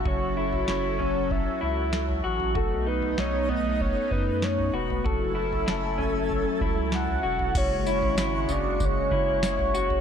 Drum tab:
CC |----------------|----------------|----------------|x---------------|
TB |----------------|----------------|----------------|x-x-x-x-x---x-x-|
SD |----o-------o---|----o-------o---|----o-------o---|----o-------o---|
FT |o--o--o-o----o-o|o--o--o-o----o-o|o--o--o-o----o-o|o--o--o-o----o-o|
BD |o-------o-------|o-------o-o-----|o-------o-o-----|o-------o-o-----|